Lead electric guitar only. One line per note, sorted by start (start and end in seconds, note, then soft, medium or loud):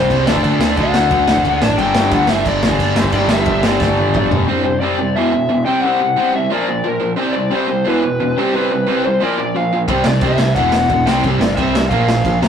0.00 0.24 C5 loud
0.26 0.43 D5 medium
0.44 0.79 D5 loud
0.77 1.57 F#5 loud
1.78 2.10 G5 loud
2.15 2.30 F#5 loud
2.30 2.47 E5 loud
2.48 2.94 D5 loud
3.14 3.33 D5 loud
3.33 3.66 E5 loud
3.67 4.29 D5 medium
4.64 4.80 C5 medium
4.80 5.12 D5 medium
5.16 5.65 E5 medium
5.66 5.81 G5 medium
5.81 6.34 F#5 loud
6.35 6.51 E5 medium
6.51 6.86 D5 medium
6.87 7.10 A#4 medium
7.33 7.51 D5 loud
7.55 7.88 C5 medium
7.89 8.39 B4 medium
8.38 8.55 G4 medium
8.55 9.01 B4 loud
9.05 9.23 C5 medium
9.23 9.56 D5 loud
9.57 9.80 F5 medium
10.07 10.22 D5 medium
10.22 10.54 E5 medium
10.55 11.08 F#5 loud
11.07 11.23 G5 medium
11.43 11.55 D5 loud
11.55 11.89 E5 loud
11.89 12.37 F5 loud
12.43 12.48 A#5 medium